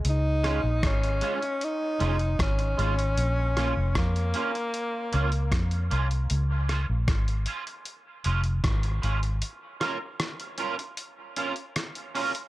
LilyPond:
<<
  \new Staff \with { instrumentName = "Clean electric guitar" } { \time 4/4 \key des \major \tempo 4 = 77 r8 <aes des' f'>8 r8 <aes des' f'>8 r8 <aes des' f'>8 r8 <aes des' f'>8 | r8 <bes des' f'>8 r8 <bes des' f'>8 r8 <bes des' f'>8 r8 <bes des' f'>8 | r8 <aes des' f'>8 r8 <aes des' f'>8 r8 <aes des' f'>8 r8 <aes des' f'>8 | r8 <des' f' bes'>8 r8 <des' f' bes'>8 r8 <des' f' bes'>8 r8 <des' f' bes'>8 | }
  \new Staff \with { instrumentName = "Tenor saxophone" } { \time 4/4 \key des \major ees'4 des'4 ees'4 des'4~ | des'4 bes2~ bes8 r8 | r1 | r1 | }
  \new Staff \with { instrumentName = "Fingered electric bass" } { \clef bass \time 4/4 \key des \major des,8. bes,,16 aes,,8 r4 f,,8 aes,,8 aes,,8 | bes,,8. f,,16 f,8 r4 des,8 f,8 c,8 | des,8. bes,,16 aes,,8 r4 f,,8 aes,,8 aes,,8 | r1 | }
  \new DrumStaff \with { instrumentName = "Drums" } \drummode { \time 4/4 hh8 <hh ss>8 <hh bd ss>16 hh16 hh16 hh16 hh8 hh16 hh16 <hh bd ss>16 hh16 hh16 hh16 | hh8 <hh ss>8 <hh bd ss>16 hh16 hh16 hh16 hh8 hh16 hh16 <hh bd ss>16 hh16 hh16 hh16 | hh8 <hh ss>8 <hh bd ss>16 hh16 hh16 hh16 hh8 hh16 hh16 <hh bd ss>16 hh16 hh16 hh16 | hh8 <hh ss>8 <hh ss>16 hh16 hh16 hh16 hh8 hh16 hh16 <hh ss>16 hh16 hho16 hh16 | }
>>